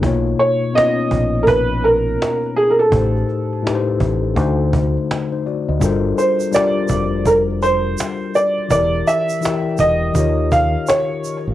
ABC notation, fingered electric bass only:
X:1
M:4/4
L:1/16
Q:"Swing 16ths" 1/4=83
K:Gdor
V:1 name="Fingered electric bass" clef=bass
=B,,,2 z4 ^A,,,6 z4 | A,,,2 z4 A,,,2 D,,4 z3 D,, | G,,,2 z4 F,,,6 z4 | E,,,2 z4 E,,,2 _E,,4 z3 A,,, |]